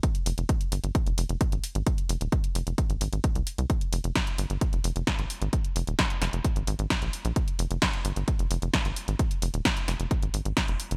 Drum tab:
HH |xxoxxxoxxxoxxxox|xxoxxxoxxxoxxxox|xxoxxxoxxxoxxxox|xxoxxxoxxxoxxxox|
SD |----------------|----------------|----o-------o---|----o-o-----o---|
BD |o---o---o---o---|o---o---o---o---|o---o---o---o---|o---o---o---o---|

HH |xxoxxxoxxxoxxxox|xxoxxxoxxxoxxxox|
SD |----o-------o---|----o-o-----o---|
BD |o---o---o---o---|o---o---o---o---|